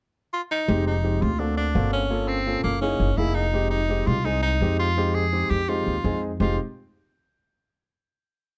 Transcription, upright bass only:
0.68 1.18 F1 medium
1.22 1.72 D2 medium
1.75 2.58 G1 medium
2.64 2.97 F#1 medium
3.00 3.16 F#1 medium
3.18 4.01 F1 medium
4.07 4.57 C2 medium
4.61 5.44 F2 medium
5.50 5.84 F2 medium
5.86 6.03 D#2 medium
6.04 6.36 F2 medium
6.40 6.57 F1 medium

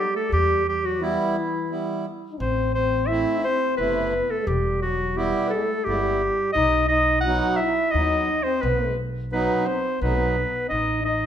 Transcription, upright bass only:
0.32 1.16 E2 loud
2.40 3.23 A1 loud
3.78 4.20 F#1 medium
4.47 5.30 E1 loud
5.87 6.28 G1 medium
6.56 7.39 B1 medium
7.94 8.35 D#2 medium
8.63 9.46 B1 medium
10.01 10.43 B1 medium
10.71 11.26 A1 medium

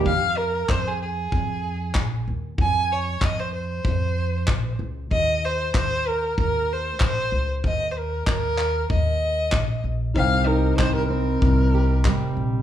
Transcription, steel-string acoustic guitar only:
0.00 0.13 D#3 medium
0.00 0.12 G3 medium
0.00 0.13 A#3 medium
0.00 0.12 D4 medium
0.00 0.13 G4 medium
10.15 11.42 C3 medium
10.47 12.62 D#4 medium
10.79 12.05 G3 medium
11.10 12.62 C4 medium
11.43 12.62 C3 medium
11.75 12.62 G4 medium
12.06 12.62 G3 medium

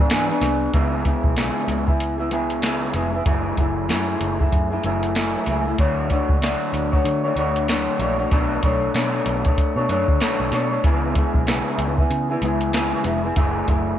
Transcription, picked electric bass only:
0.00 0.29 G#2 medium
0.42 0.67 C2 medium
0.73 1.14 C#2 medium
1.23 1.49 B1 medium
1.68 2.90 C#2 medium
2.94 3.20 F1 medium
3.26 3.51 F#1 medium
3.57 3.90 F#1 medium
3.89 4.14 F#2 medium
4.21 4.46 F#1 medium
4.52 4.77 F#2 medium
4.84 5.35 F#1 medium
5.47 5.72 C#2 medium
5.79 6.19 D2 medium
6.29 6.54 C#2 medium
6.73 6.98 D2 medium
7.05 7.30 D3 medium
7.36 7.87 D2 medium
7.99 8.25 A#1 medium
8.31 8.56 B1 medium
8.63 8.88 B1 medium
8.94 9.20 B2 medium
9.26 9.51 B1 medium
9.76 9.86 B2 medium
9.89 10.04 F#2 medium
10.08 10.18 D2 medium
10.21 muted picked electric bass stroke soft
10.40 10.50 B1 medium
10.52 10.77 B2 medium
10.84 11.24 C#2 medium
11.34 11.59 B1 medium
11.78 12.04 C#2 medium
12.10 12.35 C#3 medium
12.42 12.92 C#2 medium
13.05 13.30 F1 medium
13.36 13.61 F#1 medium
13.68 13.93 F#1 medium

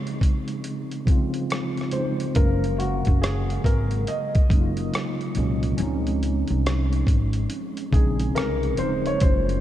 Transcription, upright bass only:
2.37 2.99 F#1 loud
3.08 3.58 F#1 medium
3.65 4.02 G#1 medium
4.51 4.88 F#1 medium
5.37 5.74 C2 medium
5.80 6.42 C#2 loud
6.50 7.01 C2 medium
7.07 7.45 G#1 medium
7.93 8.31 A#1 medium
8.37 8.79 C2 medium
8.79 9.17 D#1 medium
9.22 9.61 F#1 loud

